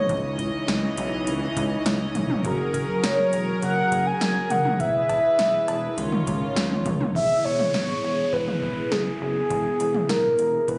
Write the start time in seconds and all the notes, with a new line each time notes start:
Already playing: C#5 D#5
0.09 C#2 C#3 E3 C#4 D#4 E4 C#5, kick, closed hi-hat
0.39 kick, closed hi-hat
0.68 C#2, snare, closed hi-hat
0.97 B1, closed hi-hat
1.27 C#2, closed hi-hat
1.57 C#2, kick, closed hi-hat
1.86 C#2, snare, closed hi-hat
2.15 E1, kick, closed hi-hat, mid tom
2.30 mid tom
2.45 F#1 F#3 F#4 G#4 A#4, kick, closed hi-hat
2.74 kick, closed hi-hat
3.04 F#1 C#5, snare, closed hi-hat
3.33 E1, closed hi-hat
3.62 F#1 F#5, closed hi-hat
3.92 F#1, kick, closed hi-hat
4.07 G#5
4.21 F#1, snare, closed hi-hat
4.50 F#1 F#5, closed hi-hat, mid tom
4.65 mid tom
4.80 E1 E3 E4 G#4 B4 E5, kick, closed hi-hat
5.09 kick, closed hi-hat, cowbell
5.39 E1, snare, closed hi-hat
5.68 E1, closed hi-hat, cowbell
5.98 C#2 C#3 D#3 C#4 F4 C#5, closed hi-hat
6.12 mid tom
6.27 C#2, kick, closed hi-hat
6.56 C#2, snare, closed hi-hat
6.71 mid tom
6.86 C#2, kick, closed hi-hat, mid tom
7.00 mid tom
7.15 E1 B3 E4 G#4 E5, kick, downlifter
7.45 E1 C#5
7.59 mid tom
7.74 E1, snare
8.03 E1
8.33 E1 B4, kick
8.48 mid tom
8.63 E1, kick
8.92 F#1 G#4, snare
9.21 F#1 G#4
9.50 E1, kick, closed hi-hat
9.80 E1, closed hi-hat
9.95 mid tom
10.09 E1 A#4, snare, closed hi-hat
10.39 E1, closed hi-hat
10.68 E1 B4, kick, closed hi-hat